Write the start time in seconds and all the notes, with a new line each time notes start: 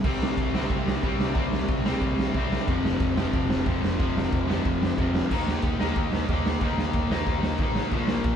0.04 C2 C3 G3 C4, kick, crash
0.19 C2, snare
0.37 C2, kick, ride
0.53 C2 G3 C4, snare
0.57 C3
0.70 C2, kick, ride
0.85 C2, snare
1.03 C2 C3 G3 C4, kick, ride
1.19 C2, snare
1.35 C2 C3 G3 C4, kick, ride
1.52 C2, snare
1.68 C2, kick, ride
1.84 C2 G3 C4, snare
1.89 C3
2.01 C2, kick, ride
2.16 C2, snare
2.34 C2 C3 G3, kick, ride
2.39 C4
2.52 snare
2.67 F1 F2 C3, kick, ride
2.71 F3
2.83 F1, snare
3.00 F1, kick, ride
3.16 F1 C3 F3, snare
3.20 F2
3.33 F1, kick, ride
3.49 F1, snare
3.66 F1 F2 C3, kick, ride
3.70 F3
3.82 F1, snare
3.99 F1 F2 C3 F3, kick, ride
4.15 F1, snare
4.32 F1, kick, ride
4.47 F1 F2 C3 F3, snare
4.64 F1, kick, ride
4.79 F1, snare
4.98 F1 F2 C3 F3, kick, ride
5.15 snare
5.31 D#2 D#3 A#3 D#4, kick, crash
5.46 D#2, snare
5.62 D#2, kick, ride
5.79 D#2 D#3 A#3 D#4, snare
5.95 D#2, kick, ride
6.11 D#2, snare
6.28 D#2 D#3 A#3, kick, ride
6.33 D#4
6.44 D#2, snare
6.61 D#2 D#3 A#3, kick, ride
6.66 D#4
6.76 D#2, snare
6.93 D#2, kick, ride
7.10 D#2 A#3 D#4, snare
7.15 D#3
7.26 D#2, kick, ride
7.43 D#2, snare
7.58 A1 D#3, kick, ride
7.62 A#3 D#4
7.75 snare
7.91 A#1 A#2 F3, kick, ride
7.96 A#3
8.07 A#1, snare
8.24 A#1, kick, ride